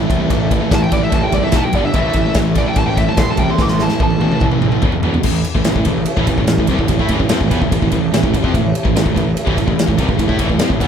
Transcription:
Already playing: A2 E3 A3
0.09 C2 A2 E3, kick, ride
0.20 A2 E3
0.30 A1 A2 E3 A3, kick, ride
0.51 A2 E3, kick, ride
0.61 A2 E3
0.69 A1 A2 E3, kick, snare, ride
0.75 A5
0.83 G5
0.89 A1 A2 E3 A3 D5, kick, ride
0.94 A2
1.00 A2 E3 E5
1.10 A1 A2 E3 A5, kick, ride
1.21 A2 E3 G5
1.32 C2 A2 E3 D5, kick, ride
1.43 A2 E3 E5
1.52 B1 B2 F#3 B3, kick, snare, ride
1.57 A5
1.64 B2 F#3 G5
1.73 G1 G2 D3 G3 D5, kick, ride
1.84 G2 D3 E5
1.94 A1 A2 E3 A3 E5, kick, ride
2.13 A1 A2 E3, kick, ride
2.25 A2 E3
2.34 A1 A2 E3, kick, snare, ride
2.54 A2 E3 A3, kick, ride
2.58 D5
2.66 A2 E3 G5
2.76 A1 A2 E3 A5, kick, ride
2.86 A2 E3 G5
2.97 A2 E3 E5, kick, ride
3.08 A2 E3 A5
3.17 A1 A2 E3 A3 C6, kick, snare, ride
3.30 A2 E3 A5
3.37 C2 A2 E3 G5, kick, ride
3.50 A2 E3 C6
3.58 A1 A2 E3 A3 D6, kick, snare
3.68 C6, snare
3.79 A2 E3 A5, snare
3.89 A2 E3, snare
4.00 A1 A2 E3 A5, kick, high tom
4.10 high tom
4.18 A1 A2 E3 A3, high tom
4.32 A2 E3, mid tom
4.41 A1 A2 E3, kick, mid tom
4.51 A2 E3, mid tom
4.62 A1 A2 E3, mid tom
4.72 A2 E3, mid tom
4.81 E1 E2 B2 E3, kick, mid tom
4.92 E2 B2, floor tom
5.03 E1 E2 B2 E3, floor tom
5.14 E2 B2, floor tom
5.23 A1 A2 E3, kick, crash
5.44 ride
5.55 A1 A2 E3, kick
5.64 A1 A2 E3, snare, ride
5.75 A1 A2 E3, kick
5.85 A1 A2 E3, kick, ride
6.06 ride
6.17 A1 A2 E3, kick
6.27 A1 A2 E3, kick, ride
6.38 A1 A2 E3, kick
6.47 snare, ride
6.58 A1 A2 E3, kick
6.67 C2 C3 G3, kick, ride
6.79 A1 A2 E3, kick
6.88 A1 A2 E3, kick, ride
6.99 A2 A3 E4, kick
7.09 A1 A2 E3, kick, ride
7.20 A1 A2 E3, kick
7.29 F2 F3 C4, snare, ride
7.41 A1 A2 E3, kick
7.51 E2 E3 B3, kick, ride
7.62 A1 A2 E3, kick
7.71 A1 A2 E3, kick, ride
7.82 A1 A2 E3, kick
7.92 A1 A2 E3, kick, ride
8.14 A1 A2 E3, snare, ride
8.23 A1 A2 E3, kick
8.33 A1 A2 E3, kick, ride
8.42 F2 F3 C4, kick
8.53 A1 A2 E3, kick, ride
8.75 ride
8.84 A1 A2 E3, kick
8.95 A1 A2 E3, snare, ride
9.04 A1 A2 E3, kick
9.14 A1 A2 E3, kick, ride
9.37 ride
9.45 A1 A2 E3, kick
9.57 A1 A2 E3, kick, ride
9.67 A1 A2 E3, kick
9.79 snare, ride
9.86 A1 A2 E3, kick
9.98 C2 C3 G3, kick, ride
10.07 A1 A2 E3, kick
10.18 A1 A2 E3, kick, ride
10.28 A2 A3 E4, kick
10.39 A1 A2 E3, kick, ride
10.49 A1 A2 E3, kick
10.58 F2 F3 C4, snare, ride
10.70 A1 A2 E3, kick
10.80 E2 E3 B3, kick, ride

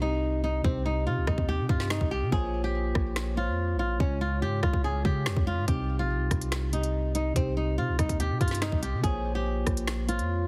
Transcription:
Already playing: C2 D#4 G4
0.00 C3 C4 D#4 G4
0.44 D#4
0.62 C2 C3 C4 D#4 G4, kick
0.86 D#4
1.06 C3 F4
1.17 C2
1.27 C2 D#4, kick, cross-stick
1.38 D#2, kick
1.49 G4
1.59 C3
1.67 G2 C3 C4 D#4 F4 G4, kick
1.80 snare
1.90 D#4, finger snap, snare
2.01 C2, kick
2.11 G4
2.22 C3
2.30 A#1 A#3 F4 G#4 C5 C#5, kick
2.64 G4
2.93 A#1 A#3 F4 C5 C#5, kick, cross-stick
3.16 finger snap, snare
3.35 A#3 F4 C5 C#5
3.48 F2
3.74 A#1
3.79 F4
3.98 C#2 C#3 G#3 C#4 F4 C#5, kick
4.21 F4
4.42 G#2 G4
4.63 C#2 F4, kick, cross-stick
4.73 C#2, kick
4.84 G#4
5.03 C#3 G#3 F4 G4 C#5, kick
5.26 F2, finger snap, snare
5.37 F2, kick
5.47 F4
5.58 G#2
5.66 C2 C3 C4 D#4 G4, kick, closed hi-hat
5.99 A#1 F4
6.15 C2
6.29 C2 C3 C4 D#4 G4, kick, cross-stick, closed hi-hat
6.42 closed hi-hat
6.52 finger snap, snare, closed hi-hat
6.71 C3 C4 D#4 G4, closed hi-hat
6.83 closed hi-hat
7.15 D#4, closed hi-hat
7.34 C2 C3 C4 D#4 G4, kick, closed hi-hat
7.57 D#4
7.78 C3 F4
7.88 C2
7.99 C2 D#4, kick, cross-stick, closed hi-hat
8.09 D#2, kick, closed hi-hat
8.20 G4, closed hi-hat
8.30 C3
8.39 G2 C3 C4 D#4 F4 G4, kick, closed hi-hat
8.48 snare, closed hi-hat
8.55 closed hi-hat
8.62 D#4, finger snap, snare, closed hi-hat
8.72 C2, kick
8.82 G4, closed hi-hat
8.93 C3
9.02 A#1 A#3 F4 G#4 C5 C#5, kick, closed hi-hat
9.35 G4
9.65 A#1 A#3 F4 C5 C#5, kick, cross-stick, closed hi-hat
9.77 closed hi-hat
9.87 finger snap, snare, closed hi-hat
10.07 A#3 F4 C5 C#5, closed hi-hat
10.19 F2, closed hi-hat

